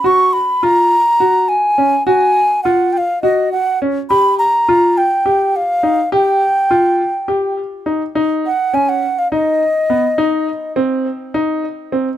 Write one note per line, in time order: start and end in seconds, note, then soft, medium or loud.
0.04 0.34 F#4 medium
0.04 0.34 C#6 loud
0.33 0.65 B5 medium
0.63 0.93 F4 medium
0.63 1.50 A#5 loud
1.20 1.50 F#4 medium
1.48 2.06 G#5 medium
1.78 1.93 C#4 medium
2.06 2.37 F#4 medium
2.06 2.61 G#5 loud
2.63 2.95 F4 medium
2.63 2.94 F#5 medium
2.93 2.98 G5 medium
2.97 3.22 F5 medium
3.22 3.53 F#4 medium
3.22 3.49 D#5 medium
3.52 3.79 F#5 medium
3.82 3.97 C#4 medium
4.10 4.40 G4 medium
4.10 4.37 B5 loud
4.39 4.99 A#5 medium
4.69 4.98 F4 medium
4.97 5.58 G5 medium
5.26 5.56 G4 medium
5.56 6.13 F5 medium
5.83 5.98 D#4 medium
6.12 6.42 G4 medium
6.12 7.54 G5 medium
6.71 7.01 F4 medium
7.28 7.58 G4 medium
7.86 8.01 D#4 medium
8.15 8.45 D#4 medium
8.46 8.76 F#5 medium
8.73 9.04 C#4 medium
8.73 8.90 G#5 medium
8.89 9.20 F#5 medium
9.19 9.31 F5 medium
9.31 9.62 D#4 medium
9.31 10.73 D#5 medium
9.90 10.05 B3 medium
10.18 10.48 D#4 medium
10.76 11.06 C4 medium
11.34 11.64 D#4 medium
11.92 12.07 C4 medium